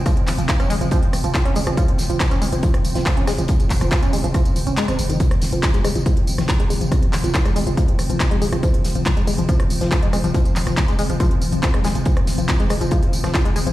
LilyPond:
<<
  \new Staff \with { instrumentName = "Synth drone" } { \clef bass \time 4/4 \key f \minor \tempo 4 = 140 <f c'>1~ | <f c'>1~ | <f c'>1 | <f c'>1~ |
<f c'>1~ | <f c'>1~ | <f c'>1~ | <f c'>1 | }
  \new Staff \with { instrumentName = "Synth arpeggio sound" } { \clef bass \time 4/4 \key f \minor f16 r8 f16 f16 des'16 aes16 f16 f16 r8 f16 f16 des'16 aes16 f16 | f16 r8 f16 f16 des'16 aes16 f16 f16 r8 f16 f16 des'16 aes16 f16 | f16 r8 f16 f16 des'16 aes16 f16 f16 r8 des'16 aes16 c'16 r16 ees16 | f16 r8 f16 f16 aes16 aes16 f16 f16 r8 f16 f16 aes16 aes16 f16 |
f16 r8 f16 f16 aes16 aes16 f16 f16 r8 f16 f16 aes16 aes16 f16 | f16 r8 f16 f16 aes16 aes16 f16 f16 r8 f16 f16 aes16 aes16 f16 | f16 r8 f16 f16 aes16 aes16 f16 f16 r8 f16 f16 aes16 aes16 f16 | f16 r8 f16 f16 aes16 aes16 f16 f16 r8 f16 f16 aes16 aes16 f16 | }
  \new Staff \with { instrumentName = "808-style bass" } { \clef bass \time 4/4 \key f \minor r16 f,,16 f,,16 f,,16 r16 f,,16 f,,16 f,,16 r16 f,,16 f,,16 f,,16 r16 f,,16 f,,16 f,,16 | r16 f,,16 f,,16 f,,16 r16 f,,16 f,,16 f,,16 r16 f,,16 f,,16 f,,16 r16 f,,16 f,,16 f,,16 | r16 f,,16 f,,16 f,,16 r16 f,,16 f,,16 f,,16 r16 f,,16 f,,16 f,,16 r16 f,,16 f,,16 f,,16 | r16 f,,16 f,,16 f,,16 r16 f,,16 f,,16 f,,16 r16 f,,16 f,,16 f,,16 r16 f,,16 f,,16 f,,16 |
r16 f,,16 f,,16 f,,16 r16 f,,16 f,,16 f,,16 r16 f,,16 f,,16 f,,16 r16 f,,16 f,,16 f,,16 | r16 f,,16 f,,16 f,,16 r16 f,,16 f,,16 f,,16 r16 f,,16 f,,16 f,,16 r16 f,,16 f,,16 f,,16 | r16 f,,16 f,,16 f,,16 r16 f,,16 f,,16 f,,16 r16 f,,16 f,,16 f,,16 r16 f,,16 f,,16 f,,16 | r16 f,,16 f,,16 f,,16 r16 f,,16 f,,16 f,,16 r16 f,,16 f,,16 f,,16 r16 f,,16 f,,16 f,,16 | }
  \new DrumStaff \with { instrumentName = "Drums" } \drummode { \time 4/4 <hh bd ss tamb>16 hh16 <hc hh hho tamb>16 <hh tamb>16 <hc hh bd sn tamb>16 <hh ss tamb>16 <hh hho tamb>16 <hh tamb>16 <hh bd tamb>16 hh16 <hh hho ss tamb>16 <hh tamb>16 <hc hh bd sn tamb>16 hh16 <hh hho tamb>16 <hh ss tamb>16 | <hh bd tamb>16 hh16 <hh hho sn tamb>16 <hh tamb>16 <hc hh bd ss sn tamb>16 <hh tamb>16 <hh hho tamb>16 <hh tamb>16 <hh bd tamb>16 <hh ss>16 <hh hho tamb>16 <hh sn tamb>16 <hc hh bd sn>16 hh16 <hh hho ss sn tamb>16 <hh tamb>16 | <hh bd tamb>16 <hh tamb>16 <hc hh hho bd tamb>16 <hh ss tamb>16 <hc hh bd sn tamb>16 <hh tamb>16 <hh hho tamb>16 <hh tamb>16 <hh bd ss tamb>16 <hh tamb>16 <hh hho tamb>16 <hh tamb>16 <hc hh sn tamb>16 <hh ss tamb>16 <hh hho tamb>16 <hh tamb>16 | <hh bd tamb>16 <hh ss>16 <hh hho sn tamb>16 <hh tamb>16 <hc hh bd sn tamb>16 <hh tamb>16 <hh hho ss tamb>16 <hh tamb>16 <hh bd tamb>16 hh16 <hh hho tamb>16 <hh ss sn>16 <hc hh bd sn tamb>16 hh16 <hh hho tamb>16 <hh tamb>16 |
<hh bd ss tamb>16 hh16 <hc hh hho tamb>16 <hh tamb>16 <hc hh bd sn tamb>16 <hh ss tamb>16 <hh hho tamb>16 <hh tamb>16 <hh bd tamb>16 hh16 <hh hho ss tamb>16 <hh tamb>16 <hc hh bd sn tamb>16 hh16 <hh hho tamb>16 <hh ss tamb>16 | <hh bd tamb>16 hh16 <hh hho sn tamb>16 <hh tamb>16 <hc hh bd ss sn tamb>16 <hh tamb>16 <hh hho tamb>16 <hh tamb>16 <hh bd tamb>16 <hh ss>16 <hh hho tamb>16 <hh sn tamb>16 <hc hh bd sn tamb>16 hh16 <hh hho ss tamb>16 <hh tamb>16 | <hh bd tamb>16 <hh tamb>16 <hc hh hho tamb>16 <hh ss tamb>16 <hc hh bd sn tamb>16 <hh tamb>16 <hh hho tamb>16 <hh tamb>16 <hh bd ss tamb>16 hh16 <hh hho tamb>16 <hh tamb>16 <hc hh bd sn tamb>16 <hh ss>16 <hh hho sn tamb>16 <hh tamb>16 | <hh bd tamb>16 <hh ss>16 <hh hho sn tamb>16 <hh tamb>16 <hc hh bd sn>16 <hh tamb>16 <hh hho ss tamb>16 <hh tamb>16 <hh bd tamb>16 hh16 <hh hho tamb>16 <hh ss sn tamb>16 <hc hh bd sn tamb>16 hh16 <hh hho tamb>16 <hh tamb>16 | }
>>